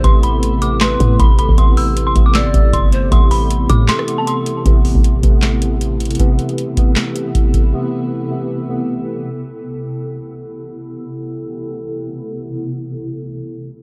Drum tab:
HH |x---x---x---x---x---x---x---x---|x---o---x---x---x---x---x---x---|x---o---x---x---x---x---x---x---|x---o---x---x---x---x---x---xxxx|
CP |----------------x---------------|----------------x---------------|----------------x---------------|----------------x---------------|
SD |----------------o---------------|----------------o---------------|----------------o-r-------------|----------------o---------------|
BD |o-------------------o---o-----o-|o-----------o-------o---o-------|o-----------o-------------------|o-----o-----o-------------------|

HH |x---x-x-x---x---x---x---x---x---|--------------------------------|--------------------------------|--------------------------------|
CP |----------------x---------------|--------------------------------|--------------------------------|--------------------------------|
SD |----------------o---------------|--------------------------------|--------------------------------|--------------------------------|
BD |o-----------o-----------o---o---|--------------------------------|--------------------------------|--------------------------------|

HH |--------------------------------|
CP |--------------------------------|
SD |--------------------------------|
BD |--------------------------------|